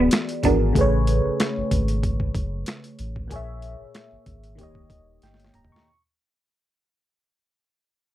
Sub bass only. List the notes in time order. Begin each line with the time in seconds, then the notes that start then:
0.44 G#1
0.76 A1
1.25 G#1
1.57 G#1
1.72 G#1
2.35 F#1
3.00 A1
3.31 A#1
3.80 G#1
4.12 G#1
4.27 G#1
4.59 D#1
4.90 D#1
5.23 G1
5.55 D1